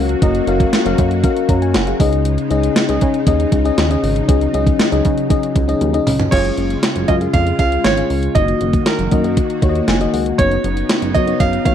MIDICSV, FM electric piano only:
0, 0, Header, 1, 2, 480
1, 0, Start_track
1, 0, Tempo, 508475
1, 208, Time_signature, 4, 2, 24, 8
1, 11090, End_track
2, 0, Start_track
2, 0, Title_t, "FM electric piano"
2, 0, Program_c, 0, 5
2, 0, Control_c, 0, 64, 127
2, 0, Note_on_c, 0, 61, 83
2, 0, Note_on_c, 0, 66, 81
2, 0, Note_on_c, 0, 69, 67
2, 0, Note_on_c, 0, 70, 78
2, 0, Note_on_c, 0, 77, 98
2, 182, Note_off_c, 0, 61, 0
2, 184, Note_off_c, 0, 66, 0
2, 186, Note_off_c, 0, 70, 0
2, 188, Note_off_c, 0, 77, 0
2, 204, Note_on_c, 0, 61, 85
2, 207, Note_on_c, 0, 66, 79
2, 212, Note_on_c, 0, 70, 77
2, 216, Note_on_c, 0, 75, 95
2, 431, Note_off_c, 0, 61, 0
2, 432, Note_off_c, 0, 66, 0
2, 434, Note_off_c, 0, 70, 0
2, 437, Note_off_c, 0, 75, 0
2, 444, Note_on_c, 0, 61, 88
2, 448, Note_on_c, 0, 66, 81
2, 452, Note_on_c, 0, 70, 81
2, 456, Note_on_c, 0, 77, 96
2, 783, Note_off_c, 0, 61, 0
2, 785, Note_off_c, 0, 66, 0
2, 787, Note_off_c, 0, 70, 0
2, 789, Note_off_c, 0, 77, 0
2, 805, Note_on_c, 0, 61, 92
2, 808, Note_on_c, 0, 66, 82
2, 813, Note_on_c, 0, 70, 86
2, 817, Note_on_c, 0, 77, 105
2, 1144, Note_off_c, 0, 61, 0
2, 1145, Note_off_c, 0, 66, 0
2, 1148, Note_off_c, 0, 70, 0
2, 1149, Note_off_c, 0, 77, 0
2, 1164, Note_on_c, 0, 61, 86
2, 1167, Note_on_c, 0, 66, 78
2, 1172, Note_on_c, 0, 70, 81
2, 1174, Note_on_c, 0, 77, 95
2, 1409, Note_on_c, 0, 82, 61
2, 1410, Note_off_c, 0, 70, 0
2, 1411, Note_off_c, 0, 77, 0
2, 1415, Note_on_c, 0, 73, 53
2, 1503, Note_off_c, 0, 61, 0
2, 1505, Note_off_c, 0, 66, 0
2, 1522, Note_off_c, 0, 82, 0
2, 1525, Note_off_c, 0, 73, 0
2, 1529, Note_on_c, 0, 80, 70
2, 1642, Note_off_c, 0, 80, 0
2, 1647, Note_on_c, 0, 78, 66
2, 1653, Note_on_c, 0, 70, 60
2, 1762, Note_off_c, 0, 78, 0
2, 1765, Note_off_c, 0, 70, 0
2, 1770, Note_on_c, 0, 77, 60
2, 1776, Note_on_c, 0, 68, 53
2, 1879, Note_off_c, 0, 68, 0
2, 1884, Note_on_c, 0, 61, 91
2, 1888, Note_on_c, 0, 49, 74
2, 1888, Note_on_c, 0, 63, 86
2, 1890, Note_on_c, 0, 68, 78
2, 1894, Note_on_c, 0, 75, 97
2, 1899, Control_c, 0, 64, 0
2, 1902, Note_off_c, 0, 69, 0
2, 1997, Note_off_c, 0, 77, 0
2, 2088, Control_c, 0, 64, 127
2, 2335, Note_off_c, 0, 61, 0
2, 2337, Note_off_c, 0, 63, 0
2, 2339, Note_off_c, 0, 68, 0
2, 2341, Note_off_c, 0, 75, 0
2, 2362, Note_on_c, 0, 61, 89
2, 2366, Note_on_c, 0, 63, 78
2, 2370, Note_on_c, 0, 68, 85
2, 2373, Note_on_c, 0, 75, 98
2, 2570, Note_off_c, 0, 49, 0
2, 2702, Note_off_c, 0, 61, 0
2, 2704, Note_off_c, 0, 63, 0
2, 2706, Note_off_c, 0, 68, 0
2, 2708, Note_off_c, 0, 75, 0
2, 2721, Note_on_c, 0, 61, 89
2, 2726, Note_on_c, 0, 63, 80
2, 2729, Note_on_c, 0, 68, 85
2, 2734, Note_on_c, 0, 75, 104
2, 3061, Note_off_c, 0, 61, 0
2, 3064, Note_off_c, 0, 63, 0
2, 3066, Note_off_c, 0, 68, 0
2, 3068, Note_off_c, 0, 75, 0
2, 3081, Note_on_c, 0, 61, 91
2, 3085, Note_on_c, 0, 63, 84
2, 3088, Note_on_c, 0, 68, 80
2, 3093, Note_on_c, 0, 75, 97
2, 3422, Note_off_c, 0, 61, 0
2, 3423, Note_off_c, 0, 63, 0
2, 3425, Note_off_c, 0, 68, 0
2, 3427, Note_off_c, 0, 75, 0
2, 3440, Note_on_c, 0, 61, 89
2, 3445, Note_on_c, 0, 63, 78
2, 3448, Note_on_c, 0, 68, 81
2, 3452, Note_on_c, 0, 75, 100
2, 3669, Note_off_c, 0, 61, 0
2, 3671, Note_off_c, 0, 63, 0
2, 3673, Note_off_c, 0, 68, 0
2, 3675, Note_off_c, 0, 75, 0
2, 3680, Note_on_c, 0, 61, 89
2, 3683, Note_on_c, 0, 63, 78
2, 3687, Note_on_c, 0, 68, 77
2, 3691, Note_on_c, 0, 75, 102
2, 3805, Note_on_c, 0, 49, 73
2, 4021, Note_off_c, 0, 61, 0
2, 4023, Note_off_c, 0, 63, 0
2, 4024, Note_off_c, 0, 68, 0
2, 4027, Note_off_c, 0, 75, 0
2, 4039, Note_on_c, 0, 61, 84
2, 4042, Note_on_c, 0, 63, 78
2, 4046, Note_on_c, 0, 68, 81
2, 4050, Note_on_c, 0, 75, 93
2, 4268, Note_off_c, 0, 61, 0
2, 4270, Note_off_c, 0, 63, 0
2, 4272, Note_off_c, 0, 68, 0
2, 4274, Note_off_c, 0, 75, 0
2, 4280, Note_on_c, 0, 61, 94
2, 4284, Note_on_c, 0, 63, 82
2, 4288, Note_on_c, 0, 68, 79
2, 4292, Note_on_c, 0, 75, 100
2, 4489, Note_off_c, 0, 49, 0
2, 4621, Note_off_c, 0, 61, 0
2, 4623, Note_off_c, 0, 63, 0
2, 4625, Note_off_c, 0, 68, 0
2, 4627, Note_off_c, 0, 75, 0
2, 4639, Note_on_c, 0, 61, 88
2, 4644, Note_on_c, 0, 63, 81
2, 4647, Note_on_c, 0, 68, 83
2, 4651, Note_on_c, 0, 75, 97
2, 4981, Note_off_c, 0, 61, 0
2, 4983, Note_off_c, 0, 63, 0
2, 4985, Note_off_c, 0, 68, 0
2, 4987, Note_off_c, 0, 75, 0
2, 5000, Note_on_c, 0, 61, 82
2, 5003, Note_on_c, 0, 63, 78
2, 5008, Note_on_c, 0, 68, 81
2, 5012, Note_on_c, 0, 75, 98
2, 5341, Note_off_c, 0, 61, 0
2, 5343, Note_off_c, 0, 63, 0
2, 5345, Note_off_c, 0, 68, 0
2, 5347, Note_off_c, 0, 75, 0
2, 5361, Note_on_c, 0, 61, 92
2, 5364, Note_on_c, 0, 63, 79
2, 5369, Note_on_c, 0, 68, 80
2, 5372, Note_on_c, 0, 75, 93
2, 5589, Note_off_c, 0, 61, 0
2, 5591, Note_off_c, 0, 63, 0
2, 5593, Note_off_c, 0, 68, 0
2, 5595, Note_off_c, 0, 75, 0
2, 5600, Note_on_c, 0, 61, 87
2, 5603, Note_on_c, 0, 63, 76
2, 5606, Note_on_c, 0, 68, 74
2, 5610, Note_on_c, 0, 75, 95
2, 5941, Note_off_c, 0, 61, 0
2, 5942, Note_off_c, 0, 63, 0
2, 5944, Note_off_c, 0, 68, 0
2, 5946, Note_off_c, 0, 75, 0
2, 5958, Note_on_c, 0, 61, 66
2, 5964, Note_on_c, 0, 65, 65
2, 5967, Note_on_c, 0, 68, 61
2, 5970, Note_on_c, 0, 77, 74
2, 5979, Control_c, 0, 64, 0
2, 6153, Control_c, 0, 64, 127
2, 6637, Note_off_c, 0, 61, 0
2, 6640, Note_off_c, 0, 65, 0
2, 6642, Note_off_c, 0, 68, 0
2, 6643, Note_off_c, 0, 77, 0
2, 6680, Note_on_c, 0, 61, 73
2, 6685, Note_on_c, 0, 65, 65
2, 6687, Note_on_c, 0, 68, 63
2, 6692, Note_on_c, 0, 77, 79
2, 6790, Note_off_c, 0, 61, 0
2, 6794, Note_off_c, 0, 65, 0
2, 6797, Note_off_c, 0, 68, 0
2, 6801, Note_on_c, 0, 61, 69
2, 6802, Note_off_c, 0, 77, 0
2, 6806, Note_on_c, 0, 65, 60
2, 6808, Note_on_c, 0, 68, 66
2, 6813, Note_on_c, 0, 77, 76
2, 7142, Note_off_c, 0, 61, 0
2, 7144, Note_off_c, 0, 65, 0
2, 7145, Note_off_c, 0, 68, 0
2, 7147, Note_off_c, 0, 77, 0
2, 7162, Note_on_c, 0, 61, 65
2, 7166, Note_on_c, 0, 65, 61
2, 7170, Note_on_c, 0, 68, 60
2, 7173, Note_on_c, 0, 77, 77
2, 7502, Note_off_c, 0, 61, 0
2, 7504, Note_off_c, 0, 65, 0
2, 7506, Note_off_c, 0, 68, 0
2, 7508, Note_off_c, 0, 77, 0
2, 7522, Note_on_c, 0, 61, 70
2, 7527, Note_on_c, 0, 65, 62
2, 7531, Note_on_c, 0, 68, 64
2, 7533, Note_on_c, 0, 77, 73
2, 7862, Note_off_c, 0, 61, 0
2, 7864, Note_off_c, 0, 65, 0
2, 7867, Note_off_c, 0, 68, 0
2, 7868, Note_off_c, 0, 77, 0
2, 7885, Note_on_c, 0, 58, 65
2, 7888, Note_on_c, 0, 63, 63
2, 7892, Note_on_c, 0, 66, 64
2, 7895, Note_on_c, 0, 75, 75
2, 7899, Control_c, 0, 64, 0
2, 8048, Control_c, 0, 64, 127
2, 8561, Note_off_c, 0, 58, 0
2, 8562, Note_off_c, 0, 63, 0
2, 8564, Note_off_c, 0, 66, 0
2, 8566, Note_off_c, 0, 75, 0
2, 8600, Note_on_c, 0, 58, 68
2, 8605, Note_on_c, 0, 63, 69
2, 8608, Note_on_c, 0, 66, 67
2, 8611, Note_on_c, 0, 75, 80
2, 8707, Note_off_c, 0, 58, 0
2, 8711, Note_off_c, 0, 63, 0
2, 8715, Note_off_c, 0, 66, 0
2, 8718, Note_off_c, 0, 75, 0
2, 8718, Note_on_c, 0, 58, 73
2, 8722, Note_on_c, 0, 63, 63
2, 8726, Note_on_c, 0, 66, 65
2, 8729, Note_on_c, 0, 75, 73
2, 9060, Note_off_c, 0, 58, 0
2, 9062, Note_off_c, 0, 63, 0
2, 9064, Note_off_c, 0, 66, 0
2, 9066, Note_off_c, 0, 75, 0
2, 9080, Note_on_c, 0, 58, 79
2, 9085, Note_on_c, 0, 63, 74
2, 9088, Note_on_c, 0, 66, 73
2, 9092, Note_on_c, 0, 73, 71
2, 9147, Note_off_c, 0, 73, 0
2, 9150, Note_on_c, 0, 75, 86
2, 9325, Note_on_c, 0, 80, 65
2, 9421, Note_off_c, 0, 58, 0
2, 9423, Note_off_c, 0, 63, 0
2, 9425, Note_off_c, 0, 66, 0
2, 9440, Note_on_c, 0, 58, 82
2, 9441, Note_off_c, 0, 75, 0
2, 9443, Note_on_c, 0, 63, 75
2, 9447, Note_on_c, 0, 66, 75
2, 9452, Note_on_c, 0, 75, 89
2, 9550, Note_off_c, 0, 80, 0
2, 9566, Note_on_c, 0, 78, 64
2, 9781, Note_off_c, 0, 58, 0
2, 9783, Note_off_c, 0, 63, 0
2, 9785, Note_off_c, 0, 66, 0
2, 9787, Note_off_c, 0, 75, 0
2, 9790, Note_off_c, 0, 78, 0
2, 9799, Note_on_c, 0, 59, 69
2, 9803, Note_on_c, 0, 63, 65
2, 9807, Note_on_c, 0, 66, 65
2, 9811, Note_on_c, 0, 73, 79
2, 9818, Control_c, 0, 64, 0
2, 9969, Control_c, 0, 64, 127
2, 10478, Note_off_c, 0, 59, 0
2, 10480, Note_off_c, 0, 63, 0
2, 10482, Note_off_c, 0, 66, 0
2, 10484, Note_off_c, 0, 73, 0
2, 10519, Note_on_c, 0, 59, 70
2, 10522, Note_on_c, 0, 63, 65
2, 10527, Note_on_c, 0, 66, 64
2, 10531, Note_on_c, 0, 73, 75
2, 10628, Note_off_c, 0, 59, 0
2, 10632, Note_off_c, 0, 63, 0
2, 10635, Note_off_c, 0, 66, 0
2, 10639, Note_off_c, 0, 73, 0
2, 10639, Note_on_c, 0, 59, 72
2, 10644, Note_on_c, 0, 63, 65
2, 10647, Note_on_c, 0, 66, 63
2, 10651, Note_on_c, 0, 73, 78
2, 10981, Note_off_c, 0, 59, 0
2, 10983, Note_off_c, 0, 63, 0
2, 10984, Note_off_c, 0, 66, 0
2, 10986, Note_off_c, 0, 73, 0
2, 10997, Note_on_c, 0, 59, 64
2, 11002, Note_on_c, 0, 63, 61
2, 11006, Note_on_c, 0, 66, 63
2, 11009, Note_on_c, 0, 73, 74
2, 11090, Note_off_c, 0, 59, 0
2, 11090, Note_off_c, 0, 63, 0
2, 11090, Note_off_c, 0, 66, 0
2, 11090, Note_off_c, 0, 73, 0
2, 11090, End_track
0, 0, End_of_file